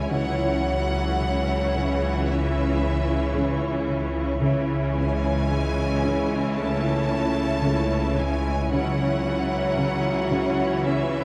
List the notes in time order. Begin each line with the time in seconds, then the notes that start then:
Already playing: G#3 G#5
0.10 C#2 C#3 E3 F#3 C#4 E4 C#5 E5 F#5
0.67 C#4
1.21 C#3
1.74 C#3
2.25 E3 C#4 E5
2.81 C#4
3.34 C#3
3.88 C#3
4.42 C#2 C#3 E3 C#4 E4 C#5 E5
4.96 G#3 C#4 G#5
5.50 C#3
6.05 C#3
6.57 A3 C#4 A5
7.11 C#4
7.64 C#3
8.18 C#3 G#3 G#5
8.72 C#2 C#3 E3 F#3 C#4 E4 C#5 E5 F#5
9.25 C#4
9.79 C#3
10.33 C#3
10.86 E3 C#4 E5